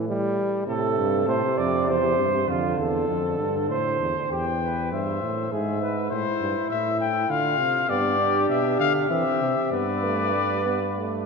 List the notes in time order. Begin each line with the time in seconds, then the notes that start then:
Already playing: A2
0.09 G3
0.67 A2 C3 A4
0.98 G2
1.28 A2 C5
1.57 F2 D5
1.88 E2 C5
2.18 G2
2.48 F2 D3 F4
2.78 E2 A4
3.08 F2 D3
3.38 G2
3.69 A2 C5
4.00 E2
4.30 E2 G4 G5
4.62 B4
4.92 G2 C5 E5
5.22 A2
5.52 G#2 G#4 E5
5.81 B4
6.10 A2 E4 C5
6.41 G2
6.70 A2 E5
7.01 G5
7.29 D3 F4 F5
7.59 C3
7.89 G2 B3 G4 D5
8.19 D4
8.49 B2 E5
8.80 D3 F5
9.09 E3 C4 G4 E5
9.41 C3
9.72 G2 B3 B4 D5
10.04 A3
10.34 G3
10.65 B3
10.97 A3